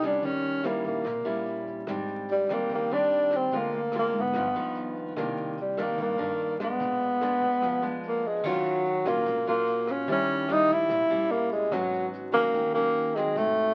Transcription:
Already playing: upright bass C2, nylon-string guitar C3
0.02 nylon-string guitar G3 C#4, tenor saxophone D4, kick, cross-stick, closed hi-hat
0.22 upright bass D#2, nylon-string guitar D#3, tenor saxophone C#4, kick, closed hi-hat
0.44 closed hi-hat
0.63 nylon-string guitar G3 C#4 E4, tenor saxophone A#3, cross-stick, closed hi-hat
0.84 upright bass A#1, tenor saxophone A#3, kick, closed hi-hat
1.04 upright bass A#1, nylon-string guitar A#2, kick, cross-stick, closed hi-hat
1.25 upright bass A#1, nylon-string guitar G3 C#4 E4, closed hi-hat
1.46 closed hi-hat
1.66 kick, closed hi-hat
1.87 upright bass G#1, nylon-string guitar G#2 G3 C4 D4, kick, cross-stick, closed hi-hat
2.08 closed hi-hat
2.29 tenor saxophone G3, closed hi-hat
2.49 upright bass D#2, nylon-string guitar G3 C4 D4, kick, cross-stick, closed hi-hat
2.53 tenor saxophone A#3
2.69 upright bass D#2, nylon-string guitar D#3, kick, closed hi-hat
2.75 tenor saxophone A#3
2.90 upright bass D#2, nylon-string guitar G3 C4 D4, tenor saxophone D4, closed hi-hat
3.10 closed hi-hat
3.31 kick, cross-stick, closed hi-hat
3.36 tenor saxophone C4
3.51 upright bass D2, nylon-string guitar D3 G#3 C4 F4, kick, closed hi-hat
3.57 tenor saxophone A#3
3.72 closed hi-hat
3.92 nylon-string guitar G#3 C4 F4, cross-stick, closed hi-hat
3.99 tenor saxophone A#3
4.12 upright bass G#2, kick, closed hi-hat
4.20 tenor saxophone B3
4.34 upright bass G1, nylon-string guitar G2 F3 B3 D#4, kick, cross-stick, closed hi-hat
4.54 upright bass D#2, nylon-string guitar F3 B3 D#4, closed hi-hat
4.75 closed hi-hat
4.96 kick, closed hi-hat
5.16 upright bass C2, nylon-string guitar C3 D#3 A#3 D4, kick, cross-stick, closed hi-hat
5.37 closed hi-hat
5.57 tenor saxophone G3, closed hi-hat
5.77 upright bass G2, nylon-string guitar D#3 A#3 D4, kick, cross-stick, closed hi-hat
5.82 tenor saxophone A#3
5.98 upright bass G2, nylon-string guitar G2, tenor saxophone A#3, kick, closed hi-hat
6.18 upright bass G2, nylon-string guitar D#3 A#3 D4, closed hi-hat
6.39 closed hi-hat
6.60 nylon-string guitar G#3 D4, kick, cross-stick, closed hi-hat
6.64 tenor saxophone B3
6.79 upright bass A#1, nylon-string guitar A#2, kick, closed hi-hat
7.01 closed hi-hat
7.21 nylon-string guitar G#3 B3 D4, cross-stick, closed hi-hat
7.41 upright bass F2, kick, closed hi-hat
7.62 upright bass F2, nylon-string guitar F3, kick, cross-stick, closed hi-hat
7.82 upright bass F2, nylon-string guitar G#3 B3 D4, closed hi-hat
8.03 closed hi-hat
8.07 tenor saxophone A#3
8.23 tenor saxophone G#3, kick, closed hi-hat
8.44 upright bass D#2, nylon-string guitar D#3 F#3 C#4 F4, tenor saxophone F#3, kick, cross-stick, crash
8.65 closed hi-hat
8.85 closed hi-hat
9.05 upright bass A#1, nylon-string guitar F#3 C#4 F4, tenor saxophone A#3, kick, cross-stick, closed hi-hat
9.26 upright bass A#1, nylon-string guitar A#2, kick, closed hi-hat
9.46 upright bass A#1, nylon-string guitar F#3 C#4 F4, tenor saxophone A#3, closed hi-hat
9.67 closed hi-hat
9.87 tenor saxophone C#4, cross-stick, closed hi-hat
10.07 upright bass D#2, nylon-string guitar D#3 G3 C#4 E4, kick, closed hi-hat
10.12 tenor saxophone C#4
10.28 closed hi-hat
10.49 nylon-string guitar G3 C#4 E4, tenor saxophone D#4, cross-stick, closed hi-hat
10.68 upright bass A#1, kick, closed hi-hat
10.73 tenor saxophone E4
10.89 upright bass A#1, nylon-string guitar A#2, kick, cross-stick, closed hi-hat
11.10 upright bass A#1, nylon-string guitar G3 C#4 E4, closed hi-hat
11.31 tenor saxophone A#3, closed hi-hat
11.51 tenor saxophone G#3, closed hi-hat
11.71 upright bass G#1, nylon-string guitar G#2 F#3 B3 C#4, tenor saxophone F#3, kick, cross-stick, closed hi-hat
11.93 closed hi-hat
12.13 closed hi-hat
12.32 upright bass D#2, nylon-string guitar F#3 C#4, tenor saxophone A#3, kick, cross-stick
12.54 upright bass D#2, nylon-string guitar D#3, kick, closed hi-hat
12.74 upright bass D#2, nylon-string guitar F#3 C#4, tenor saxophone A#3, closed hi-hat
12.96 closed hi-hat
13.15 nylon-string guitar F#3 C4, tenor saxophone G#3, cross-stick, closed hi-hat
13.36 upright bass G#1, nylon-string guitar G#2, tenor saxophone A3, kick, closed hi-hat
13.57 closed hi-hat

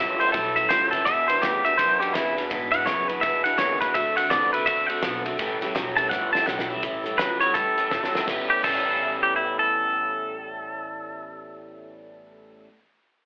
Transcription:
Already playing: upright bass G1, clean electric guitar A2 F#3 E5, steel-string acoustic guitar A2 E3 G3 C#4 E4
0.00 steel-string acoustic guitar A4
0.19 clean electric guitar A2 E3 C5, steel-string acoustic guitar G3 C#4 E4 A4, ride
0.32 upright bass B1, clean electric guitar A2 E3 A4, steel-string acoustic guitar G3 C#4 E4 A4, kick, snare, ride
0.55 clean electric guitar A2 E3 E5, steel-string acoustic guitar G3 C#4 E4 A4, ride
0.69 upright bass C#2, clean electric guitar A2 F#3 C5, steel-string acoustic guitar A2 E3 G3 C#4 E4 A4, snare, ride
0.91 clean electric guitar A2 E3 A4, steel-string acoustic guitar G3 C#4 E4 A4, kick, snare, ride
1.05 clean electric guitar E2 B2 E5, upright bass E2, steel-string acoustic guitar E3 G#3 D4 E4 B4, kick, ride
1.28 clean electric guitar E2 B2 C5, steel-string acoustic guitar D4 E4 B4, ride
1.41 upright bass D2, clean electric guitar E2 C#3 G4, steel-string acoustic guitar E3 G#3 D4 E4 B4, snare, ride
1.64 clean electric guitar E2 B2 E5, steel-string acoustic guitar D4 E4 B4, ride
1.78 clean electric guitar E2 B2 C5, upright bass F#2, steel-string acoustic guitar G#3 D4 E4 B4, kick, snare, ride
2.00 clean electric guitar E2 B2 G4, steel-string acoustic guitar D4 E4 B4, ride
2.13 clean electric guitar E2 C#3 E4, upright bass E2, steel-string acoustic guitar E3 G#3 D4 E4 B4, snare, ride
2.37 clean electric guitar E2 B2, steel-string acoustic guitar D4 E4 B4, snare, ride
2.50 clean electric guitar E2 B2, upright bass G#2, steel-string acoustic guitar E3 G#3 D4 E4 B4, kick, ride
2.72 clean electric guitar E2 B2 F#5, steel-string acoustic guitar D4 E4 B4, ride
2.85 clean electric guitar E2 C#3 C#5, upright bass F#2, steel-string acoustic guitar E3 G#3 D4 E4 B4, snare, ride
3.08 clean electric guitar E2 B2 B4, steel-string acoustic guitar D4 E4 B4, ride
3.21 clean electric guitar E2 B2 E5, upright bass E2, steel-string acoustic guitar G#3 D4 E4 B4, kick, snare, ride
3.44 clean electric guitar E2 B2 F#5, steel-string acoustic guitar D4 E4 B4, ride
3.58 upright bass D#2, clean electric guitar E2 C#3 C#5, steel-string acoustic guitar E3 G#3 D4 E4 B4, snare, ride
3.80 clean electric guitar E2 B2 B4, steel-string acoustic guitar D4 E4 B4, kick, snare, ride
3.94 upright bass D2, steel-string acoustic guitar D3 A3 C4 F#4 A4, clean electric guitar D3 A3 E5, kick, ride
4.16 clean electric guitar D3 A3 F#5, steel-string acoustic guitar C4 F#4 A4, snare, ride
4.30 upright bass C2, steel-string acoustic guitar D3 A3 C4 F#4 A4, clean electric guitar D3 B3 D5, snare, ride
4.53 clean electric guitar D3 A3 B4, steel-string acoustic guitar C4 F#4 A4, ride
4.66 upright bass D2, clean electric guitar D3 A3 E5, steel-string acoustic guitar A3 C4 F#4 A4, kick, ride
4.86 clean electric guitar D3 A3 F#5, steel-string acoustic guitar F#4 A4, ride
4.91 steel-string acoustic guitar C4
5.03 upright bass B1, clean electric guitar D3 B3, steel-string acoustic guitar D3 A3 C4 F#4 A4, snare, ride
5.25 clean electric guitar D3 A3, steel-string acoustic guitar C4 F#4 A4, ride
5.38 upright bass A1, steel-string acoustic guitar A2 E3 G3 C#4 G4 A4, clean electric guitar A2 E3, kick, snare, ride
5.61 clean electric guitar A2 E3, steel-string acoustic guitar G3 C#4 G4 A4, snare, ride
5.74 upright bass E1, steel-string acoustic guitar A2 E3 G3 C#4 G4 A4, clean electric guitar A2 F#3, snare, ride
5.97 clean electric guitar A2 E3 A5, steel-string acoustic guitar G3 C#4 G4 A4, ride
6.09 upright bass G1, clean electric guitar A2 E3 F#5, steel-string acoustic guitar G3 C#4 G4 A4, kick, snare
6.32 clean electric guitar A2 E3 A5, steel-string acoustic guitar G3 C#4 G4 A4, snare
6.45 upright bass B1, steel-string acoustic guitar A2 E3 G3 C#4 G4 A4, clean electric guitar A2 F#3 F#5, snare
6.59 snare
6.68 clean electric guitar A2 E3 E5, steel-string acoustic guitar G3 C#4 G4 A4
6.82 upright bass A1, steel-string acoustic guitar A2 E3 G3 C#4 E4 A4, clean electric guitar A2 E3, kick, closed hi-hat
7.04 clean electric guitar A2 E3, steel-string acoustic guitar G3 C#4 E4 A4, closed hi-hat
7.17 upright bass C#2, clean electric guitar A2 F#3 B4, steel-string acoustic guitar G3 C#4, snare, closed hi-hat
7.40 clean electric guitar A2 F#3 C#5, steel-string acoustic guitar G3 C#4 E4 A4, closed hi-hat
7.54 upright bass E2, steel-string acoustic guitar A2 E3 G3 C#4 E4 A4, clean electric guitar A2 E3 A4, kick, snare, closed hi-hat
7.78 clean electric guitar A2 E3, steel-string acoustic guitar G3 C#4 E4 A4, closed hi-hat
7.91 upright bass G2, clean electric guitar A2 F#3, steel-string acoustic guitar G3 C#4 E4 A4, kick, snare
8.04 snare
8.13 clean electric guitar A2 F#3, steel-string acoustic guitar G3 C#4 E4 A4, muted upright bass stroke, snare
8.26 upright bass A1, steel-string acoustic guitar A2 E3 B3, clean electric guitar A2 E3 G3 C#4, kick, snare
8.30 steel-string acoustic guitar C#4 G4 A4, clean electric guitar E4 B4
8.50 clean electric guitar G4
8.61 upright bass A1, steel-string acoustic guitar A2 E3 B3, clean electric guitar A2 E3 G3 A4, kick, crash
8.65 clean electric guitar C#4 E4 B4, steel-string acoustic guitar C#4 G4 A4
9.23 clean electric guitar G4
9.36 clean electric guitar E4
9.59 clean electric guitar A4

